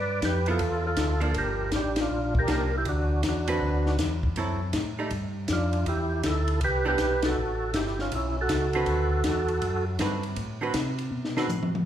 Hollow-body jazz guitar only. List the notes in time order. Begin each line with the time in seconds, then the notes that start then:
0.47 F3 B3 E4
1.20 F3 A#3 D4
2.47 F3 A#3 D4
3.48 D3 C4 F#4 B4
4.37 F#3 C4 E4 A4
4.99 G3 A3 D#4
6.85 E3 B3 D4 G4
8.75 D3 C4 F#4 B4
10.00 D3 C4 F#4 B4
10.61 D3 C4 F#4 B4
11.37 D3 C4 F#4 B4